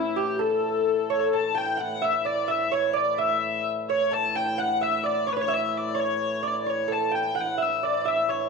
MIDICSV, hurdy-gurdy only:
0, 0, Header, 1, 2, 480
1, 0, Start_track
1, 0, Tempo, 464037
1, 403, Time_signature, 6, 3, 24, 8
1, 8783, End_track
2, 0, Start_track
2, 0, Title_t, "Hurdy-gurdy"
2, 0, Program_c, 0, 110
2, 0, Note_on_c, 0, 64, 74
2, 179, Note_off_c, 0, 64, 0
2, 179, Note_on_c, 0, 67, 81
2, 422, Note_off_c, 0, 67, 0
2, 422, Note_on_c, 0, 69, 89
2, 1157, Note_on_c, 0, 73, 77
2, 1259, Note_off_c, 0, 73, 0
2, 1377, Note_off_c, 0, 69, 0
2, 1384, Note_on_c, 0, 81, 80
2, 1628, Note_off_c, 0, 81, 0
2, 1628, Note_on_c, 0, 79, 77
2, 1864, Note_off_c, 0, 79, 0
2, 1864, Note_on_c, 0, 78, 80
2, 2113, Note_off_c, 0, 78, 0
2, 2113, Note_on_c, 0, 76, 83
2, 2336, Note_on_c, 0, 74, 84
2, 2343, Note_off_c, 0, 76, 0
2, 2593, Note_off_c, 0, 74, 0
2, 2593, Note_on_c, 0, 76, 84
2, 2828, Note_off_c, 0, 76, 0
2, 2828, Note_on_c, 0, 73, 76
2, 3068, Note_off_c, 0, 73, 0
2, 3068, Note_on_c, 0, 74, 74
2, 3292, Note_off_c, 0, 74, 0
2, 3292, Note_on_c, 0, 76, 88
2, 3796, Note_off_c, 0, 76, 0
2, 4030, Note_on_c, 0, 73, 89
2, 4276, Note_off_c, 0, 73, 0
2, 4276, Note_on_c, 0, 81, 90
2, 4514, Note_off_c, 0, 81, 0
2, 4514, Note_on_c, 0, 79, 85
2, 4753, Note_off_c, 0, 79, 0
2, 4753, Note_on_c, 0, 78, 91
2, 4997, Note_off_c, 0, 78, 0
2, 4997, Note_on_c, 0, 76, 85
2, 5230, Note_off_c, 0, 76, 0
2, 5230, Note_on_c, 0, 74, 85
2, 5470, Note_off_c, 0, 74, 0
2, 5470, Note_on_c, 0, 73, 87
2, 5508, Note_on_c, 0, 71, 77
2, 5522, Note_off_c, 0, 73, 0
2, 5596, Note_off_c, 0, 71, 0
2, 5596, Note_on_c, 0, 73, 95
2, 5726, Note_off_c, 0, 73, 0
2, 5726, Note_on_c, 0, 76, 81
2, 5970, Note_off_c, 0, 76, 0
2, 5970, Note_on_c, 0, 74, 79
2, 6202, Note_off_c, 0, 74, 0
2, 6202, Note_on_c, 0, 73, 89
2, 6699, Note_off_c, 0, 73, 0
2, 6699, Note_on_c, 0, 74, 78
2, 6840, Note_off_c, 0, 74, 0
2, 6840, Note_on_c, 0, 74, 53
2, 6927, Note_off_c, 0, 74, 0
2, 6927, Note_on_c, 0, 73, 76
2, 7162, Note_off_c, 0, 73, 0
2, 7162, Note_on_c, 0, 81, 72
2, 7395, Note_off_c, 0, 81, 0
2, 7395, Note_on_c, 0, 79, 74
2, 7659, Note_off_c, 0, 79, 0
2, 7659, Note_on_c, 0, 78, 82
2, 7884, Note_off_c, 0, 78, 0
2, 7884, Note_on_c, 0, 76, 76
2, 8118, Note_off_c, 0, 76, 0
2, 8118, Note_on_c, 0, 74, 74
2, 8358, Note_off_c, 0, 74, 0
2, 8358, Note_on_c, 0, 76, 86
2, 8584, Note_off_c, 0, 76, 0
2, 8584, Note_on_c, 0, 73, 66
2, 8783, Note_off_c, 0, 73, 0
2, 8783, End_track
0, 0, End_of_file